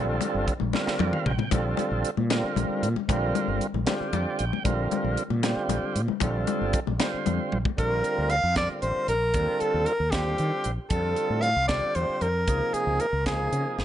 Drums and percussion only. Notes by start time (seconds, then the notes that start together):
0.21 closed hi-hat, high conga
0.48 kick, closed hi-hat
0.60 high conga, low conga
0.73 snare, muted conga
0.87 snare
0.99 high tom, high conga
1.13 mid tom
1.26 mid tom
1.39 floor tom, high conga, low conga
1.51 kick, closed hi-hat, muted conga
1.77 closed hi-hat, high conga
1.91 low conga
2.05 closed hi-hat
2.17 high conga, low conga
2.30 snare, closed hi-hat, muted conga
2.56 closed hi-hat, high conga
2.83 closed hi-hat
2.96 high conga, low conga
3.09 kick, closed hi-hat, muted conga
3.35 closed hi-hat, high conga
3.49 low conga
3.61 closed hi-hat
3.74 high conga, low conga
3.87 snare, closed hi-hat, muted conga
4.13 closed hi-hat, high conga
4.39 closed hi-hat
4.53 high conga, low conga
4.65 kick, closed hi-hat, muted conga
4.91 closed hi-hat, high conga
5.04 low conga
5.17 closed hi-hat
5.30 high conga, low conga
5.43 snare, closed hi-hat, muted conga
5.69 closed hi-hat, high conga
5.96 closed hi-hat
6.08 high conga, low conga
6.20 kick, closed hi-hat, muted conga, low conga
6.47 closed hi-hat, high conga
6.73 kick, closed hi-hat
6.87 high conga, low conga
7.00 snare, closed hi-hat, muted conga
7.26 closed hi-hat, high conga
7.52 high tom
7.65 kick, high conga, low conga
7.78 kick, closed hi-hat
8.04 closed hi-hat
8.30 closed hi-hat
8.56 kick, snare, closed hi-hat
8.82 closed hi-hat
9.08 closed hi-hat
9.34 kick, closed hi-hat
9.60 closed hi-hat
9.86 closed hi-hat
10.12 kick, snare, closed hi-hat
10.38 closed hi-hat
10.64 closed hi-hat
10.90 kick, closed hi-hat
11.16 closed hi-hat
11.43 closed hi-hat
11.69 kick, snare, closed hi-hat
11.95 closed hi-hat
12.21 closed hi-hat
12.48 kick, closed hi-hat
12.74 closed hi-hat
13.00 closed hi-hat
13.26 kick, snare, closed hi-hat
13.53 closed hi-hat
13.79 snare